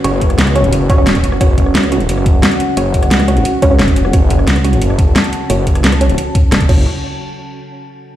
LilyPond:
<<
  \new Staff \with { instrumentName = "Ambient pad" } { \time 4/4 \key fis \minor \tempo 4 = 176 << { b'1 | fis''1~ | fis''1 | a''1~ |
a''2.~ a''8 r8 | r1 | } \\ { <cis' fis'>1~ | <cis' fis'>1~ | <cis' fis'>1~ | <cis' fis'>1~ |
<cis' fis'>2.~ <cis' fis'>8 r8 | r1 | } >> }
  \new Staff \with { instrumentName = "Synth stab" } { \time 4/4 \key fis \minor <cis' fis' cis''>16 r4 r16 <cis' fis' cis''>16 r8. <cis' fis' cis''>16 <cis' fis' cis''>4~ <cis' fis' cis''>16 | <cis' fis' cis''>4. <cis' fis' cis''>2~ <cis' fis' cis''>8 | <cis' fis' cis''>16 r4 r16 <cis' fis' cis''>16 r8. <cis' fis' cis''>16 <cis' fis' cis''>4~ <cis' fis' cis''>16 | <cis' fis' cis''>4. <cis' fis' cis''>2~ <cis' fis' cis''>8 |
<cis' fis' cis''>16 r4 r16 <cis' fis' cis''>16 r4. r16 <cis' fis' cis''>8 | r1 | }
  \new Staff \with { instrumentName = "Detuned saw bass" } { \clef bass \time 4/4 \key fis \minor fis,,4 cis,4 fis,,4. fis,,8 | fis,,4 cis,4 fis,,4 r4 | fis,,4 cis,4 r8 cis,8 fis,,4 | fis,,4 cis,4 fis,,4 r4 |
fis,,4 cis,4 r4 fis,,8 fis,,8 | r1 | }
  \new DrumStaff \with { instrumentName = "Drums" } \drummode { \time 4/4 hh8 <hh bd>16 <hh ss>16 <hh sn>16 <hh ss>16 hh16 hh16 hh8 <hh bd>8 <hh sn>16 <hh bd>16 hh16 ss16 | <hh bd>8 <hh bd>16 ss16 <hh sn>16 <hh ss>16 hh16 hh16 hh16 ss16 <hh bd>8 <hh sn>16 hh16 hh8 | hh8 <hh bd>16 <hh ss>16 <hh sn>16 <hh ss>16 hh16 hh16 hh8 <hh bd>8 <hh sn>16 <hh bd>16 hh16 ss16 | <hh bd>8 <hh bd>16 ss16 <hh sn>16 <hh ss>16 hh16 hh16 hh16 ss16 <hh bd>8 <hh sn>16 hh16 hh8 |
hh8 <hh bd>16 <hh ss>16 <hh sn>16 <hh ss>16 hh16 hh16 hh8 <hh bd>8 <hh sn>16 <hh bd>16 <cymc bd>8 | r4 r4 r4 r4 | }
>>